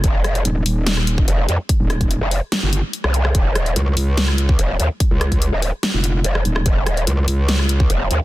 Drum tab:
HH |x-xxx-o-x-x-x-x-|x-xxx-o-x-x-x-x-|x-xxx-o-x-x-x-x-|x-xxx-o-x-x-x-x-|
SD |--r-----or------|--r-----o----r-r|--r-----or------|--r-----o----r-r|
BD |o----------o----|o--o------------|o----------o----|o--o------------|

HH |x-xxx-o-x-x-x-x-|
SD |--r-----or------|
BD |o----------o----|